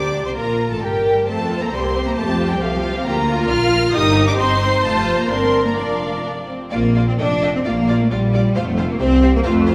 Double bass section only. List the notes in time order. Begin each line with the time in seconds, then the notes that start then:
Already playing: D2
0.24 C2
0.35 A#1
0.70 A1
0.82 G1
1.27 F2
1.73 C2
2.17 F2
2.62 C2
3.06 D2
3.50 A#1
3.95 G1
4.39 G1
4.84 F1
5.30 G1
5.78 F1
6.73 A#1
7.19 F1
7.66 A#1
8.12 A#1
8.56 F1
9.00 C2
9.45 F2